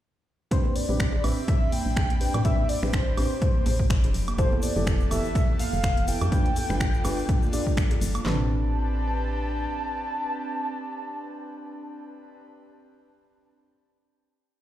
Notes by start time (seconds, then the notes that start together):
0.51 C4 D4 G4 B4 C5 B5, kick, closed hi-hat
0.65 high bongo, high conga
0.76 D5, open hi-hat
0.89 A1 C4 D4 G4 B4, low conga
1.00 finger snap, kick, closed hi-hat
1.12 high bongo
1.24 A1 C4 D4 G4 B4 E5, open hi-hat, high woodblock
1.48 E5, finger snap, kick, closed hi-hat, high bongo
1.72 G5, open hi-hat, high conga
1.86 A1
1.97 finger snap, kick, closed hi-hat, high bongo
2.10 closed hi-hat, high conga
2.20 C4 D4 G4 B4, open hi-hat
2.34 A2, closed hi-hat, high bongo, low conga, high woodblock
2.45 C4 D4 G4 B4 E5, kick, closed hi-hat
2.58 high conga
2.69 D5, open hi-hat
2.82 A1 C4 D4 G4 B4 C5, finger snap, high bongo, low conga
2.93 finger snap, kick, closed hi-hat
3.17 A1 C4 D4 G4 B4, open hi-hat, high bongo, high woodblock
3.42 kick, closed hi-hat
3.55 high conga
3.66 A1, open hi-hat, high bongo, high conga
3.80 kick
3.90 finger snap, kick, closed hi-hat
4.04 F1, closed hi-hat, high bongo
4.14 E3 B3 A4, open hi-hat, low conga
4.28 closed hi-hat, high conga, high woodblock
4.38 B3 E4 G4 A4 C5, kick, closed hi-hat, shaker
4.52 high bongo, high conga
4.62 D5, open hi-hat, shaker
4.76 F1 B3 E4 G4 A4, low conga, shaker
4.86 finger snap, kick, closed hi-hat, high bongo, shaker
5.00 shaker
5.11 F1 B3 E4 G4 A4 E5, open hi-hat, high woodblock, shaker
5.25 shaker
5.35 finger snap, kick, closed hi-hat, high bongo, shaker
5.59 F5, open hi-hat, high conga, shaker
5.73 F1, high bongo, shaker
5.83 finger snap, kick, closed hi-hat, shaker
5.97 closed hi-hat, high conga
6.08 B3 E4 G4 A4 G5, open hi-hat, shaker
6.21 F2, closed hi-hat, high bongo, low conga, high woodblock, shaker
6.32 B3 D4 F4 G4 B4, kick, closed hi-hat, shaker
6.45 closed hi-hat, high conga
6.56 open hi-hat, high bongo, shaker
6.70 G1 D4 F4 G4 B4, finger snap, low conga, shaker
6.80 finger snap, kick, closed hi-hat, shaker
6.94 shaker
7.04 G1 D4 F4 G4 B4, open hi-hat, high bongo, high woodblock, shaker
7.19 shaker
7.29 kick, closed hi-hat, shaker
7.42 high bongo, high conga, shaker
7.53 D4 F4 G4 D5, open hi-hat, high conga, shaker
7.67 kick, shaker
7.77 finger snap, kick, closed hi-hat, shaker
7.91 closed hi-hat, high bongo
8.01 G1, open hi-hat, low conga, shaker
8.15 closed hi-hat, high conga, high woodblock, shaker
8.25 A1 C4 D4 G4 B4 A5, snare, clap, floor tom